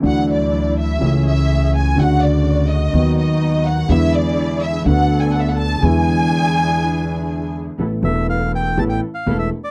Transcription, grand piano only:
X:1
M:4/4
L:1/8
Q:1/4=124
K:Emix
V:1 name="Grand piano" clef=bass
[D,,D,E,A,DF]4 [C,,C,E,A,CG]4 | [D,,C,D,A,F]4 [^D,,^D,F,B,F]4 | [E,,D,E,G,B,E]4 [D,,D,A,B,F]4 | [E,,D,E,G,B,E]8 |
[K:C] [A,,,A,,E,A,B,A] [E,,,E,,E,A,B,A]3 [A,,,A,,E,A,B,A] z [E,,,E,,E,A,B,A] z |]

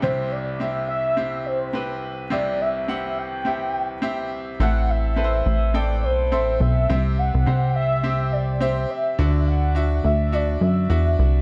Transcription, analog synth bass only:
X:1
M:4/4
L:1/16
Q:"Swing 16ths" 1/4=105
K:Clyd
V:1 name="Analog synth bass" clef=bass
z16 | z16 | A,,,6 A,,,4 B,,,2 A,,,2 B,,,2 | C,,3 C,, C,,8- C,,2 z2 |
D,,6 D,,4 F,,2 E,,2 C,,2 |]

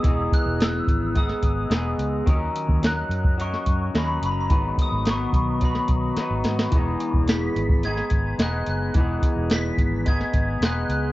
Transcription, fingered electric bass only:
X:1
M:4/4
L:1/16
Q:1/4=108
K:Elyd
V:1 name="Fingered electric bass" clef=bass
E,,,2 z E,,,3 G,,,4 G,,,2 E,,,2 C,,2 | D,,2 z D,,3 F,,4 F,,2 D,,2 F,,,2 | G,,,2 z G,,,3 B,,,4 B,,,2 z G,,, G,,2 | E,,,2 z E,,,3 G,,,4 G,,,2 E,,,2 F,,,2 |
E,,,2 z E,,,3 G,,,4 G,,,2 E,,,2 C,,2 |]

